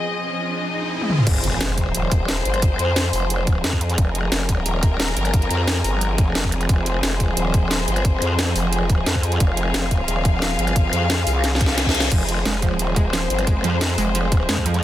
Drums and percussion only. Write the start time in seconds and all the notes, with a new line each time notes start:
1.01 high tom
1.10 mid tom
1.18 mid tom
1.27 kick, closed hi-hat, crash
1.44 closed hi-hat
1.61 snare, closed hi-hat
1.78 kick, closed hi-hat
1.95 closed hi-hat
2.12 kick, closed hi-hat
2.28 snare, closed hi-hat
2.45 closed hi-hat
2.54 closed hi-hat
2.62 kick, closed hi-hat
2.79 closed hi-hat
2.96 snare, closed hi-hat
3.13 open hi-hat
3.30 closed hi-hat
3.47 kick, closed hi-hat
3.64 snare, closed hi-hat
3.73 kick
3.81 closed hi-hat
3.90 closed hi-hat
3.98 kick, closed hi-hat
4.15 closed hi-hat
4.32 snare, closed hi-hat
4.49 kick, closed hi-hat
4.66 closed hi-hat
4.83 kick, closed hi-hat
5.00 snare, closed hi-hat
5.17 closed hi-hat
5.25 closed hi-hat
5.34 kick, closed hi-hat
5.42 closed hi-hat
5.51 closed hi-hat
5.68 snare, closed hi-hat
5.84 open hi-hat
6.01 closed hi-hat
6.18 kick, closed hi-hat
6.35 snare, closed hi-hat
6.44 kick
6.52 closed hi-hat
6.61 closed hi-hat
6.69 kick, closed hi-hat
6.86 closed hi-hat
7.03 snare, closed hi-hat
7.20 kick, closed hi-hat
7.37 closed hi-hat
7.54 kick, closed hi-hat
7.71 snare, closed hi-hat
7.88 closed hi-hat
7.96 closed hi-hat
8.05 kick, closed hi-hat
8.22 closed hi-hat
8.39 snare, closed hi-hat
8.56 open hi-hat
8.73 closed hi-hat
8.90 kick, closed hi-hat
9.06 snare, closed hi-hat
9.15 kick
9.23 closed hi-hat
9.32 closed hi-hat
9.40 kick, closed hi-hat
9.57 closed hi-hat
9.74 snare, closed hi-hat
9.91 kick, closed hi-hat
10.08 closed hi-hat
10.25 kick, closed hi-hat
10.42 snare, closed hi-hat
10.59 closed hi-hat
10.67 closed hi-hat
10.76 kick, closed hi-hat
10.93 closed hi-hat
11.10 snare, closed hi-hat
11.27 open hi-hat
11.44 snare, closed hi-hat
11.55 snare
11.61 kick, closed hi-hat
11.66 snare
11.78 snare, closed hi-hat
11.86 kick, snare
11.95 closed hi-hat
12.00 snare, closed hi-hat
12.12 kick, closed hi-hat, crash
12.29 closed hi-hat
12.45 snare, closed hi-hat
12.62 kick, closed hi-hat
12.79 closed hi-hat
12.96 kick, closed hi-hat
13.13 snare, closed hi-hat
13.30 closed hi-hat
13.39 closed hi-hat
13.47 kick, closed hi-hat
13.64 closed hi-hat
13.81 snare, closed hi-hat
13.98 open hi-hat
14.15 closed hi-hat
14.32 kick, closed hi-hat
14.49 snare, closed hi-hat
14.57 kick
14.66 closed hi-hat
14.74 closed hi-hat